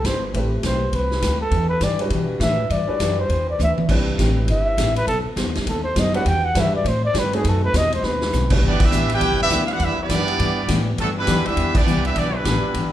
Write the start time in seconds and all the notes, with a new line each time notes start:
0.04 G1 A3 C4 G4 B4 C5, kick, snare, hi-hat pedal, ride
0.34 A1 A3 C4 E4 G4 B4, kick, ride
0.63 B1 A3 C4 G4 B4 C5, kick, snare, hi-hat pedal, ride
0.93 C2 A3 C4 G4 B4, kick, ride
1.11 snare
1.22 D2 A3 C4 G4 B4, kick, snare, hi-hat pedal, ride
1.41 A4
1.51 E2 E3 D4 G4 B4, kick, ride
1.69 B4
1.80 G2 E3 D4 G4 B4 D5, kick, snare, hi-hat pedal, ride
1.99 G3 D4 E4 F#4 B4, ride
2.10 B2 E3 D4, kick, ride
2.14 G4 B4
2.40 A2 E3 D4 G4 B4 E5, kick, snare, hi-hat pedal, ride
2.70 G2 E3 D4 G4 D5, kick, ride
2.74 B4
2.87 G3 D4 E4 F#4 B4, muted upright bass stroke
2.99 F#2 E3 D4 G4 B4, kick, snare, hi-hat pedal, ride
3.20 C5
3.29 E2 E3 D4, kick, ride
3.33 G4 B4
3.50 D5
3.59 D2 E3 D4 G4 B4, hi-hat pedal, high tom
3.63 E5
3.78 muted upright bass stroke, high tom
3.89 C2 G3 C4 D4 E4 G4 B4, kick, crash
4.18 A1 C4 E4 G4 B4, kick, snare, hi-hat pedal, ride
4.48 G1 C4 E4 G4 B4 E5, kick, ride
4.77 A1 C4 E4 G4 B4, kick, snare, hi-hat pedal, ride
4.96 B4, ride
5.07 B1 B3 D#4 A4 C5, kick, ride
5.25 muted upright bass stroke
5.36 F#2 B3 D#4 A4 C5, kick, snare, hi-hat pedal, ride
5.47 D#2
5.55 B1, snare, ride
5.66 D#2 B3 D#4 A4 C5, kick, ride
5.84 C5
5.96 F#2 B3 D#4 A4 C5 D#5, kick, snare, hi-hat pedal, ride
6.14 G3 D4 E4 F#4 B4 F#5, ride
6.25 E2 E3 D4 G4 G5, kick, ride
6.45 F#5
6.55 G2 E3 G3 D4 E4 F#4 G4 B4, kick, snare, hi-hat pedal, ride
6.60 E5
6.76 D5
6.84 A2 A3 C4 G4 B4 C5, kick, ride
7.05 D5
7.14 G2 A3 C4 G4 B4, kick, snare, hi-hat pedal, ride
7.19 B4
7.33 A3 C4 D#4 F#4 G#4 B4, ride
7.44 F#2 B2 A3 C4 D#4, kick, ride
7.49 A4
7.65 B4
7.73 E2 B2 A3 C4 D#4 D#5, kick, snare, hi-hat pedal, ride
7.92 C5, ride
8.03 D#2 B2 A3 C4 D#4 B4, snare
8.21 snare
8.33 B1 B2 A3 C4 D#4, snare, hi-hat pedal
8.50 G3 D4 E4 F#4 B4, kick, crash
8.62 G1 E3 G3 B3 D4 G4, kick
8.66 B3 E4 G4 D5
8.80 G3 B3 E4, kick, crash
8.84 D4 G4 B4 E5
8.90 A1 E3 B3 D4 G4, hi-hat pedal
9.09 B3 D4 D5 G5, ride
9.13 E4 G4 B4
9.20 B1 E3 B3 D4 G4, kick, ride
9.32 G1
9.42 E1 G3 B3 D4 E4 G4 B4 E5
9.50 D2 E3 B3 D4 G4, kick, snare, hi-hat pedal, ride
9.66 F5, ride
9.71 D4 F#4 G4 B4 F#5
9.79 E2 E3 G3 B3 D4 E4 G4, kick, ride
9.83 D4 B4 E5
9.99 G3 B3 D4 E4 G4 D5, muted upright bass stroke
10.08 F#2 E3 B3 D4 G4, kick, snare, hi-hat pedal, ride
10.28 ride
10.38 G2 E3 B3 D4 G4, kick, ride
10.67 A2 E3 B3 D4 G4, kick, snare, hi-hat pedal, ride
10.96 G2 E3 A3 B3 D4 G4, kick, ride
11.00 F#3 B3 A4
11.18 D3 G3 B3 D4 E4 B4
11.27 F#2 E3 B3 D4 G4, kick, snare, hi-hat pedal, ride
11.37 E2
11.46 D2 G3 B3 D4 E4 G4 B4 E5, ride
11.56 E2 E3 B3 D4 G4, kick, ride
11.75 G3 B3 D4 E4 G4 D5, kick, crash
11.86 C2 E3 B3 D4 G4, hi-hat pedal
12.05 G3 B3 D4 E4 G4 B4 E5, ride
12.15 B1 E3 G3 B3 D4 E4 G4 D5, kick, ride
12.35 D3 G3 B3 D4 E4 B4
12.44 A1 E3 B3 D4 G4, kick, snare, hi-hat pedal, ride
12.63 muted upright bass stroke
12.74 G1 E3 B3 D4 G4, kick, ride